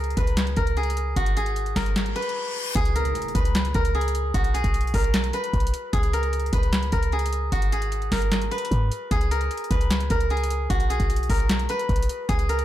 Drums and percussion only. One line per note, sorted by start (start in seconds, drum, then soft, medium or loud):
0.04 closed hi-hat soft
0.10 closed hi-hat soft
0.17 kick loud
0.17 closed hi-hat medium
0.27 closed hi-hat medium
0.37 snare loud
0.37 clap medium
0.37 closed hi-hat medium
0.47 closed hi-hat medium
0.56 kick medium
0.56 closed hi-hat medium
0.67 closed hi-hat medium
0.77 closed hi-hat soft
0.83 closed hi-hat medium
0.90 closed hi-hat medium
0.97 closed hi-hat medium
1.16 kick loud
1.16 closed hi-hat loud
1.26 closed hi-hat medium
1.37 closed hi-hat medium
1.46 closed hi-hat medium
1.56 closed hi-hat medium
1.66 closed hi-hat soft
1.76 kick loud
1.76 snare loud
1.76 clap medium
1.76 open hi-hat medium
1.86 closed hi-hat medium
1.96 snare loud
1.96 clap medium
1.96 closed hi-hat medium
2.06 closed hi-hat medium
2.16 closed hi-hat medium
2.22 closed hi-hat medium
2.29 closed hi-hat medium
2.75 kick loud
2.75 closed hi-hat loud
2.85 closed hi-hat medium
2.96 closed hi-hat medium
3.05 closed hi-hat medium
3.15 closed hi-hat medium
3.22 closed hi-hat medium
3.28 closed hi-hat soft
3.35 kick loud
3.35 closed hi-hat medium
3.45 closed hi-hat medium
3.55 snare loud
3.55 clap medium
3.55 closed hi-hat medium
3.65 closed hi-hat medium
3.74 kick medium
3.74 closed hi-hat medium
3.85 closed hi-hat medium
3.95 closed hi-hat soft
4.01 closed hi-hat medium
4.08 closed hi-hat medium
4.15 closed hi-hat medium
4.34 kick loud
4.34 closed hi-hat loud
4.44 closed hi-hat medium
4.55 closed hi-hat medium
4.64 kick medium
4.64 closed hi-hat medium
4.74 closed hi-hat medium
4.81 closed hi-hat medium
4.87 closed hi-hat soft
4.94 kick loud
4.94 open hi-hat medium
5.04 closed hi-hat medium
5.14 snare loud
5.14 clap medium
5.14 closed hi-hat medium
5.24 closed hi-hat medium
5.33 closed hi-hat medium
5.44 closed hi-hat medium
5.54 kick loud
5.54 closed hi-hat soft
5.60 closed hi-hat medium
5.67 closed hi-hat medium
5.74 closed hi-hat medium
5.93 kick loud
5.93 closed hi-hat loud
6.03 closed hi-hat medium
6.13 closed hi-hat medium
6.23 closed hi-hat medium
6.33 closed hi-hat medium
6.40 closed hi-hat medium
6.46 closed hi-hat soft
6.53 kick loud
6.53 closed hi-hat loud
6.63 closed hi-hat medium
6.73 snare loud
6.73 clap medium
6.73 closed hi-hat medium
6.83 closed hi-hat medium
6.92 kick medium
6.92 closed hi-hat medium
7.03 closed hi-hat medium
7.12 closed hi-hat soft
7.19 closed hi-hat medium
7.26 closed hi-hat medium
7.33 closed hi-hat medium
7.52 kick loud
7.52 closed hi-hat loud
7.62 closed hi-hat medium
7.72 closed hi-hat medium
7.82 closed hi-hat medium
7.92 closed hi-hat medium
8.02 closed hi-hat soft
8.12 kick loud
8.12 snare loud
8.12 clap medium
8.12 open hi-hat medium
8.22 closed hi-hat medium
8.32 snare loud
8.32 clap medium
8.32 closed hi-hat medium
8.42 closed hi-hat medium
8.52 closed hi-hat medium
8.58 closed hi-hat medium
8.65 closed hi-hat medium
8.71 kick loud
8.71 closed hi-hat medium
8.92 closed hi-hat medium
9.11 kick loud
9.11 closed hi-hat loud
9.21 closed hi-hat medium
9.31 closed hi-hat medium
9.41 closed hi-hat medium
9.51 closed hi-hat medium
9.57 closed hi-hat medium
9.64 closed hi-hat soft
9.71 kick loud
9.71 closed hi-hat medium
9.81 closed hi-hat medium
9.90 snare loud
9.90 clap medium
9.90 closed hi-hat medium
10.00 closed hi-hat medium
10.10 kick medium
10.10 closed hi-hat medium
10.20 closed hi-hat medium
10.30 closed hi-hat soft
10.37 closed hi-hat medium
10.44 closed hi-hat medium
10.50 closed hi-hat medium
10.70 kick loud
10.70 closed hi-hat medium
10.80 closed hi-hat medium
10.90 closed hi-hat medium
11.00 kick medium
11.00 closed hi-hat medium
11.10 closed hi-hat medium
11.16 closed hi-hat medium
11.23 closed hi-hat soft
11.30 kick loud
11.30 open hi-hat medium
11.40 closed hi-hat medium
11.49 snare loud
11.49 clap medium
11.49 closed hi-hat medium
11.59 closed hi-hat medium
11.69 closed hi-hat medium
11.79 closed hi-hat medium
11.89 kick loud
11.89 closed hi-hat soft
11.96 closed hi-hat medium
12.03 closed hi-hat medium
12.09 closed hi-hat medium
12.29 kick loud
12.29 closed hi-hat loud
12.39 closed hi-hat medium
12.49 closed hi-hat medium
12.59 closed hi-hat medium